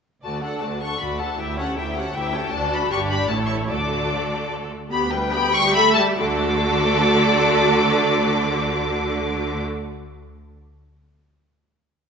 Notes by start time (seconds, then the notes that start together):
0.23 D2 A3 F#4 D5 A5
0.43 D4 A4 F#5
0.62 D2 A3 F#4 D5 A5
0.81 D4 A4 F#5 C#6
1.01 D2 A3 F#4 D5 B5
1.20 D4 A4 F#5 A5
1.39 D2 A3 E4 G4 E5 G5
1.58 C#4 G4 A4 C#5 F#5
1.77 D2 A3 E4 G4 E5 G5
1.96 C#4 G4 A4 C#5 F#5
2.14 D2 A3 E4 G4 E5 G5
2.33 C#4 G4 A4 C#5
2.52 D2 D4 F#4 A4 D5 A5
2.74 B5
2.90 G1 G2 D4 G4 D5 C#6
3.11 B5
3.28 A1 A2 A3 E4 A4 C#5 A5
3.48 C#6
3.68 D2 D3 A3 F#4 A4 D5 D6
4.90 D2 B3 G4 B5
5.11 G3 B4 G5
5.32 B3 G4 G5 B5
5.53 G3 G4 C#6
5.73 A3 A4 E5 B5
5.94 G3 G4 A5
6.18 D2 D3 A3 F#4 A4 D5 D6